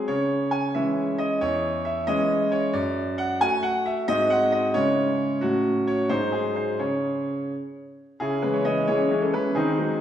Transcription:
0.08 C#3 C#5
0.51 G#5
0.74 E3 G#3 C#4 E5
1.18 D#5
1.41 E2 C#5
1.85 E5
2.07 E3 G#3 C#4 D#5
2.52 C#5
2.73 F#2 D5
3.18 F#5
3.41 A3 F#4 G#5
3.63 F#5
3.86 E5
4.08 G#2 G#3 C4 F#4 D#5
4.30 F#5
4.52 D#5
4.74 C#3 G#3 C#4 E4 C#5
5.41 A2 F#3 C#4 F#4
5.87 C#5
6.09 G#2 F#3 D#4 G#4 C5
6.32 G#4
6.56 C5
6.79 C#3 C#4 G#4 C#5
8.20 C#3 C#4 E4 G#4
8.42 E3 G#3 C#4 B4
8.54 C#5
8.65 E3 G#3 C#4 D#5
8.87 E3 G#3 C#4 E4 G#4 C#5
9.11 E3 G#3 C#4
9.21 A4
9.33 E3 G#3 C#4 B4
9.55 D#3 C4 D#4 G#4
9.78 F#3 G#3 C4

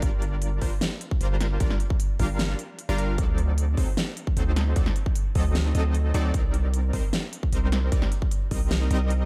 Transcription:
0.02 G1 G3 D4 F4 A#4 D5, kick, closed hi-hat
0.22 closed hi-hat
0.42 closed hi-hat
0.61 G1 G3 D4 F4 A#4 C5, kick, open hi-hat
0.81 snare, closed hi-hat
1.01 closed hi-hat
1.11 kick
1.21 G1 G3 D4 F4 A#4 C5, closed hi-hat
1.41 snare, closed hi-hat
1.60 G1 G3 D4 F4 A#4 D5, kick, closed hi-hat
1.70 snare
1.80 closed hi-hat
1.90 kick
2.00 closed hi-hat
2.19 G1 G3 D4 F4 A#4 F5, kick, open hi-hat
2.39 snare, closed hi-hat
2.59 closed hi-hat
2.79 closed hi-hat
2.89 G1 G3 D4 F4 A#4 F5
2.98 closed hi-hat
3.18 D2 F#3 C4 D#4 A4 D5, kick, closed hi-hat
3.38 closed hi-hat
3.58 closed hi-hat
3.77 D2 F#3 C4 D#4 A4 C5, kick, open hi-hat
3.97 snare, closed hi-hat
4.17 closed hi-hat
4.27 kick
4.37 D2 F#3 C4 D#4 A4 C5, closed hi-hat
4.56 snare, closed hi-hat
4.76 D2 F#3 C4 D#4 A4 D5, kick, closed hi-hat
4.86 snare
4.96 closed hi-hat
5.06 kick
5.15 closed hi-hat
5.35 D2 F#3 C4 D#4 A4 D#5, kick, open hi-hat
5.55 snare, closed hi-hat
5.75 D2 F#3 C4 D#4 A4 D#5, closed hi-hat
5.95 closed hi-hat
6.14 D2 F#3 C4 D#4 A4 D5, closed hi-hat
6.34 C2 C4 D#4 A#4 D5, kick, closed hi-hat
6.54 closed hi-hat
6.74 closed hi-hat
6.93 C2 G3 C4 D#4 A#4 C5, kick, open hi-hat
7.13 snare, closed hi-hat
7.33 closed hi-hat
7.43 kick
7.53 C2 G3 C4 D#4 A#4 C5, closed hi-hat
7.72 snare, closed hi-hat
7.92 C2 G3 C4 D#4 A#4 D5, kick, closed hi-hat
8.02 snare
8.12 closed hi-hat
8.22 kick
8.31 closed hi-hat
8.51 C2 G3 C4 D#4 A#4 D#5, kick, open hi-hat
8.71 snare, closed hi-hat
8.91 C2 G3 C4 D#4 A#4 D#5, closed hi-hat
9.10 closed hi-hat

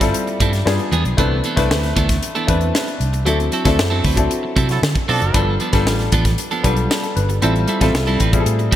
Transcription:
Already playing: G1 A4
0.00 G3 C4 E4 F4 A4, muted clean electric guitar stroke, kick, snare, closed hi-hat
0.14 muted clean electric guitar stroke, closed hi-hat
0.27 muted clean electric guitar stroke, closed hi-hat
0.40 G2 G3 C4 E4 A4, kick, closed hi-hat
0.53 muted clean electric guitar stroke, snare, closed hi-hat
0.65 G2 G3 B3 D4 F4 G#4, snare
0.79 muted clean electric guitar stroke, closed hi-hat
0.92 E2 F3 B3 D4 G#4, closed hi-hat
1.05 B1, muted clean electric guitar stroke, closed hi-hat
1.17 C2 E3 A3 B3 C4 D4 E4 A4 B4, kick, closed hi-hat
1.44 E3 B3 D4 A4, closed hi-hat
1.56 C2 E3 A3 B3 C4 D4 E4 A4 B4, kick, snare, closed hi-hat
1.70 D2, muted clean electric guitar stroke, snare
1.83 muted clean electric guitar stroke, snare, closed hi-hat
1.96 D2 E3 B3 D4 A4, kick, closed hi-hat
2.09 muted clean electric guitar stroke, kick, snare, closed hi-hat
2.23 muted clean electric guitar stroke, closed hi-hat
2.35 E3 B3 D4 A4, closed hi-hat
2.47 E2 E3 A3 B3 C4 D4 E4 B4, kick, closed hi-hat
2.61 muted clean electric guitar stroke, closed hi-hat
2.74 muted clean electric guitar stroke, snare
2.87 muted clean electric guitar stroke, closed hi-hat
3.00 C2, closed hi-hat
3.13 muted clean electric guitar stroke, closed hi-hat
3.25 D2 F#3 C4 D4 E4 A4, closed hi-hat
3.39 muted clean electric guitar stroke, closed hi-hat
3.52 F#3 C4 E4 A4, closed hi-hat
3.64 D2 F#3 C4 D4 E4 A4, kick, snare, closed hi-hat
3.78 F#2, muted clean electric guitar stroke, snare
3.90 F#3 C4 E4 A4
4.04 D2 F#3 C4 E4 B4, kick, open hi-hat
4.16 F#3 C4 D4 E4 A4, muted clean electric guitar stroke, kick, closed hi-hat
4.30 muted clean electric guitar stroke, closed hi-hat
4.43 muted clean electric guitar stroke
4.56 C3 F#3 C4 E4 A4, kick, closed hi-hat
4.69 F#3 E4 A4, muted clean electric guitar stroke, snare, closed hi-hat
4.83 D3, snare
4.95 muted clean electric guitar stroke, kick, closed hi-hat
5.08 B2 F3 F#3 C4 D4 E4 A4, open hi-hat
5.22 F#1, muted clean electric guitar stroke, closed hi-hat
5.33 G1 F3 G3 B3 D4 F4 A4, kick, closed hi-hat
5.60 F3 B3 D4 A4, closed hi-hat
5.72 G1 F3 G3 B3 D4 F4 A4, kick, snare, closed hi-hat
5.86 A1, muted clean electric guitar stroke, snare
5.99 muted clean electric guitar stroke, snare, closed hi-hat
6.12 A1 F3 B3 D4 A4, kick, closed hi-hat
6.25 muted clean electric guitar stroke, kick, snare, closed hi-hat
6.38 muted clean electric guitar stroke, closed hi-hat
6.51 F3 B3 D4 A4, closed hi-hat
6.63 B1 F3 G3 B3 D4 F4 A4 B4, kick, closed hi-hat
6.76 muted clean electric guitar stroke, closed hi-hat
6.90 muted clean electric guitar stroke, snare
7.03 A4, muted clean electric guitar stroke, closed hi-hat
7.16 G1 D4 B4, closed hi-hat
7.29 A4, muted clean electric guitar stroke, closed hi-hat
7.42 A1 G3 C4 E4 F4 A4, closed hi-hat
7.55 muted clean electric guitar stroke, closed hi-hat
7.68 G3 C4 E4 A4, closed hi-hat
7.80 A1 G3 C4 E4 F4 A4, kick, snare, closed hi-hat
7.93 C2, muted clean electric guitar stroke, snare
8.07 G3 C4 E4 A4, closed hi-hat
8.20 A1 G3 C4 E4 B4, kick, closed hi-hat
8.32 G3 C4 E4 F4 G#4, muted clean electric guitar stroke, kick, closed hi-hat
8.40 A4
8.46 A2, muted clean electric guitar stroke, closed hi-hat
8.59 muted clean electric guitar stroke, closed hi-hat
8.71 G3 C4, kick, closed hi-hat

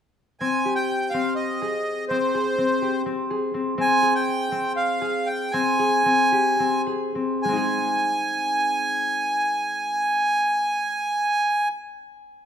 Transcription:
0.40 C4 G#5
0.65 G4
0.75 G5
1.10 C4 F5
1.35 D#5
1.62 G#4
2.08 C4 C5
2.35 G#4
2.58 C4
2.82 G4
3.06 C4
3.30 G#4
3.54 C4
3.78 C4 G#5
4.02 G#4
4.15 G5
4.52 C4
4.76 F5
5.01 G#4
5.26 G5
5.51 C4 G#5
5.79 G#4
6.06 C4
6.32 G4
6.60 C4
6.87 G#4
7.15 C4
7.42 G#3 G#5
7.49 C4 D#4
7.57 G#4

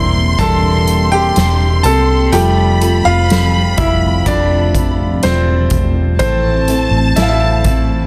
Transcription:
Already playing: E1 D3 E3 G3 A#3 C4 D4 E4 G4 A#4 C5 E5 C6
0.39 E1 E3 G3 C4 G4 A4 A#4 A5, kick, closed hi-hat
0.88 closed hi-hat
1.12 G4 G5
1.36 E1 G3 C4 G4 A#4, snare, closed hi-hat
1.83 C2 C4 G4 A4 A#4 A5, closed hi-hat
2.31 F1 F3 G3 A3 C4 F4 G4 A4 G5 B5, closed hi-hat
2.81 C4 F4 A4, closed hi-hat
3.05 F1 F4 F5
3.29 G3 C4 F4 A4, snare, closed hi-hat
3.78 F1 E4 E5, kick, closed hi-hat
4.26 F1 F3 G3 C4 D4 F4 A4 D5, kick, closed hi-hat
4.75 kick, closed hi-hat
5.23 E1 G3 C4 F4 A4 C5, snare, closed hi-hat
5.70 E1, kick, closed hi-hat
6.19 A1 A2 E3 A3 C4 E4 A4 C5 A5, kick, closed hi-hat
6.68 A3 C4 E4 A4, closed hi-hat
6.91 A1
7.16 A3 C4 E4 A4 E5, snare, closed hi-hat
7.22 F5
7.29 E4 E5
7.64 A3 C4 E4 A4, kick, closed hi-hat

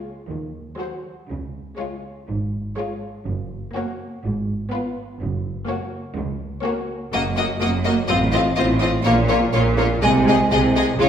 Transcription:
Already playing: G#3 F4 C#5
0.30 D#2 D#3
0.79 F#3 F#4 C5
1.29 C#2 C#3
1.78 G#3 F4 C#5
2.28 G#1 G#2
2.77 G#3 F4 C#5
3.26 F#1 F#2
3.75 A#3 F#4 C#5
4.24 G#1 G#2
4.72 B3 F4 B4
5.20 F#1 F#2
5.68 A#3 F#4 C#5
6.16 C#2
6.64 A#3 F#4 C#5
7.13 F#1 F#2 A#3 F#4 D#5
7.37 A#3 F#4 D#5
7.60 F#1 F#2 A#3 F#4 D#5
7.85 A#3 F#4 D#5
8.08 A1 A2 C4 F4 D#5
8.32 C4 F4 D#5
8.56 A1 A2 C4 F4 D#5
8.80 C4 F4 D#5
9.04 A#1 A#2 A#3 F4 C#5
9.29 A#3 F4 C#5
9.54 A#1 A#2 A#3 F4 C#5
9.77 A#3 F4 C#5
10.02 C2 C3 G#3 G#4 D#5
10.27 G#3 G#4 D#5
10.51 C2 C3 G#3 G#4 D#5
10.76 G#3 G#4 D#5
10.99 C#2 C#3 G#3 F4 C#5

